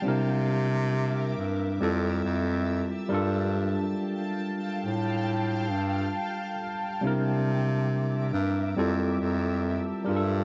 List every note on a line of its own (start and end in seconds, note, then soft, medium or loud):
0.02 1.74 G3 medium
0.02 1.75 C4 medium
0.02 1.76 D4 medium
0.02 1.78 A#4 medium
0.02 3.07 E5 medium
0.02 1.78 D6 medium
0.07 1.33 C3 loud
0.07 1.77 E4 medium
0.07 1.77 A#4 medium
1.37 1.78 G2 loud
1.80 2.21 F2 loud
1.80 3.07 G3 medium
1.80 3.11 C4 medium
1.80 3.11 E4 medium
1.80 3.11 F4 medium
1.80 3.12 A4 medium
2.24 2.91 F2 loud
3.08 3.93 G2 loud
3.08 6.53 G3 medium
3.08 6.55 D4 medium
3.08 6.54 A#4 medium
3.08 6.97 F5 medium
3.08 6.97 G5 medium
3.08 6.97 A5 medium
3.13 6.55 F4 medium
3.13 6.56 A4 loud
4.85 5.74 A2 medium
5.72 6.12 G2 loud
7.01 8.28 C3 loud
7.01 8.72 G3 medium
7.01 8.72 C4 medium
7.01 8.73 D4 medium
7.01 8.74 A#4 medium
7.01 10.03 E5 medium
7.01 8.74 D6 medium
7.05 8.74 E4 medium
7.05 8.75 A#4 medium
8.33 8.73 G2 loud
8.76 9.17 F2 loud
8.76 10.03 G3 medium
8.76 10.07 C4 medium
8.76 10.07 E4 medium
8.76 10.07 F4 medium
8.76 10.08 A4 medium
9.20 9.87 F2 loud
10.04 10.44 G2 loud
10.04 10.44 G3 medium
10.04 10.44 D4 medium
10.04 10.44 A#4 medium
10.04 10.44 F5 medium
10.04 10.44 G5 medium
10.04 10.44 A5 medium
10.09 10.44 F4 medium
10.09 10.16 G#4 medium
10.16 10.44 A4 loud